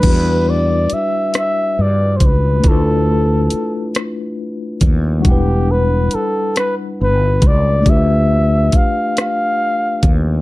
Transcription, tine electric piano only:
X:1
M:6/8
L:1/8
Q:3/8=46
K:Em
V:1 name="Tine electric piano"
[G,DEFB]6 | [A,DE=FB]6 | [G,DEBf]6 | [A,D=FGB]6 |]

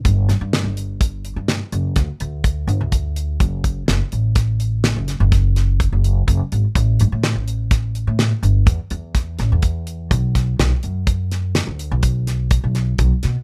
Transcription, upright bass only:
X:1
M:7/4
L:1/16
Q:1/4=125
K:Bm
V:1 name="Upright bass" clef=bass
G,,,2 G,, G,,2 G,,,6 G,,2 z F,,,2 D,, z D,,4 G,,, D,,4- D,, | F,,,4 F,,, z A,,,6- A,,, F,,,2 F,,,6 F,,,3 F,,, z ^G,,, z | A,,,2 A,, A,,2 A,,,6 A,,2 z G,,,2 E,, z E,,4 A,,, E,,4- E,, | B,,,4 B,,, z F,,6- F,, D,,2 B,,,6 B,,,3 B,,, z B,, z |]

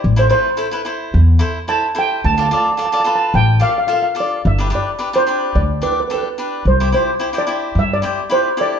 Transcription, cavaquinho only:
X:1
M:4/4
L:1/16
Q:"Swing 16ths" 1/4=109
K:C
V:1 name="Cavaquinho"
z [EAc] [EAB] z [EAc] [EAB] [EAc]2 z2 [EAc] z [EAc] z [EAc]2 | z [FAd] [FAd] z [FAd] [FAd] [FAB]2 z2 [FAd] z [FAe] z [FAd]2 | z [DGB] [DGB] z [DGB] [DGB] [DGB]2 z2 [DGd] z [DGA] z [DGB]2 | z [EGc] [EGc] z [EGc] [EGc] [EGc]2 z2 [EGc] z [EGB] z [EGA]2 |]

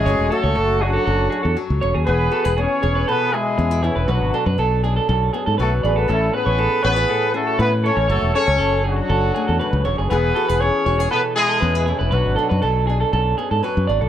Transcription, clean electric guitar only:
X:1
M:4/4
L:1/16
Q:1/4=119
K:Emix
V:1 name="Clean electric guitar"
c2 A c A2 G A A2 G A z2 c G | G2 A B G2 c B A2 G z3 G B | B2 A B A2 G A A2 G A B2 d A | A2 B c A2 c B A2 G A B2 A c |
c2 A c A2 G z A2 G A B2 c G | G2 A B G2 c G A2 G A B2 G B | B2 A B A2 G A A2 G A B2 d A |]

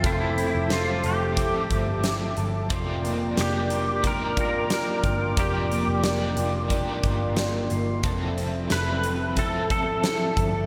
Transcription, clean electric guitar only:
X:1
M:4/4
L:1/8
Q:1/4=90
K:F
V:1 name="Clean electric guitar"
[F,,CA] C2 A E A E A | [F,,F] B, D F D F D F | [F,,F] B, D F D F D F | [F,,A] C E A E A E A |]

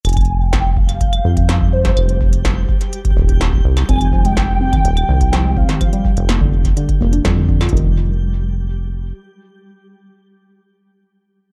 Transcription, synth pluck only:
X:1
M:4/4
L:1/16
Q:1/4=125
K:Fdor
V:1 name="Synth pluck" clef=bass
z16 | z16 | C E, F, A, z2 C E, z2 E, z F, A, C E, | F, G, z2 B, D, z2 D, z B, D G, D, D, F |
E,2 z12 z2 | z16 |]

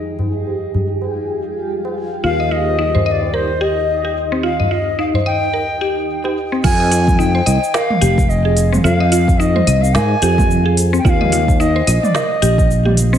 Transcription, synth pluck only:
X:1
M:4/4
L:1/16
Q:"Swing 16ths" 1/4=109
K:Fm
V:1 name="Synth pluck"
z16 | F e F z E c e2 B z G z2 G2 C | F e F z E c e2 B z G z2 G2 C | F e F z E c e2 B z G z2 A2 C |
F e F z E c e2 B z G z2 A2 C | F e F z E c e2 B z G z2 G2 C |]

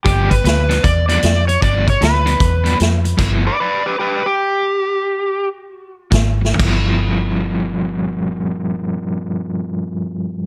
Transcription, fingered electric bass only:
X:1
M:4/4
L:1/8
Q:"Swing" 1/4=144
K:Gmix
V:1 name="Fingered electric bass" clef=bass
G,,,2 D,,2 E,,2 F,,2 | G,,,2 D,,2 E,,2 F,,2 | G,,,2 z6 | z6 _A,,,2 |
G,,,8- | G,,,8 |]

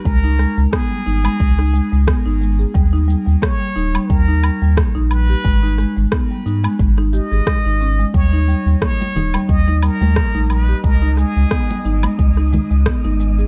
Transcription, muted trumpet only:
X:1
M:4/4
L:1/8
Q:"Swing 16ths" 1/4=89
K:D#phr
V:1 name="Muted trumpet"
A2 G4- G z | z2 c2 A2 z B- | B2 z3 d3 | c2 c2 d A2 B |
A G3 z4 |]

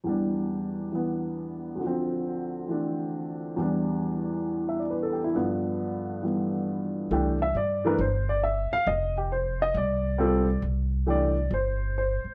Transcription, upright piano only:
X:1
M:4/4
L:1/16
Q:"Swing" 1/4=136
K:C
V:1 name="Upright piano"
z16 | z16 | z8 z2 e d B A G E | z16 |
z2 e2 d2 B2 c2 d2 e2 f2 | _e2 G2 c2 e2 d8 | z4 d4 c4 c4 |]
V:2 name="Upright piano" clef=bass
[E,,E,G,D]8 [E,B,]8 | [D,,D,F,C]8 [E,A,D]8 | [E,,E,G,D]16 | [G,,D,F,B,]8 [E,G,B,]8 |
[E,A,DG]2 z4 [E,A,D_B]2 z8 | z12 [G,CFA]2 z2 | z4 [E,A,DG]2 z8 z2 |]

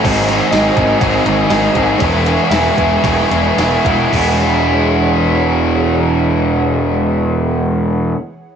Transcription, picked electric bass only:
X:1
M:4/4
L:1/8
Q:1/4=107
K:E
V:1 name="Picked electric bass" clef=bass
G,,,2 G,,, G,,, G,,, G,,, G,,, G,,, | E,,,2 E,,, E,,, E,,, E,,, E,,, E,,, | E,,,8- | E,,,8 |]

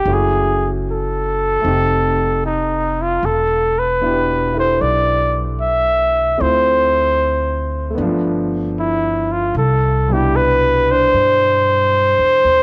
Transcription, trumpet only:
X:1
M:4/4
L:1/8
Q:"Swing" 1/4=76
K:C
V:1 name="Trumpet"
_A z =A4 _E F | A B2 c d z e2 | c4 z2 E F | A G B c4- c |]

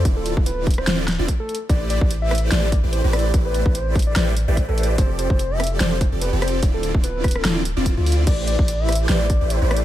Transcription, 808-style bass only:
X:1
M:4/4
L:1/16
Q:"Swing 16ths" 1/4=146
K:Am
V:1 name="808-style bass" clef=bass
D,,,3 D,,,4- D,,, D,,,3 D,,, z4 | A,,,3 A,,,4- A,,, A,,,3 A,,,2 A,,,3 | A,,,3 A,,,4- A,,, A,,,3 A,,,2 A,,,3 | F,,,3 F,,,4- F,,, F,,,3 F,,,2 F,,,3 |
D,,,3 D,,,4- D,,, D,,,3 D,,,2 D,,3 | A,,,3 A,,,4- A,,, A,,,3 A,,,2 A,,,3 |]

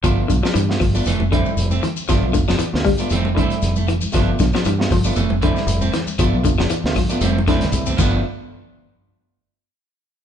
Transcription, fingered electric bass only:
X:1
M:4/4
L:1/16
Q:"Swing 16ths" 1/4=117
K:Gmix
V:1 name="Fingered electric bass" clef=bass
G,,,2 B,,, z G,,2 G,,,2 F,,, F,,,2 z F,,,2 z2 | G,,, B,,, F,,, F,,, z D,,2 z F,,,3 z F,,,4 | G,,,2 B,,, z G,,2 G,,,2 F,,, F,,,2 z F,,,2 z2 | G,,, B,,, F,,, F,,, z D,,2 z F,,,3 z C,,2 G,,,2 |
z16 |]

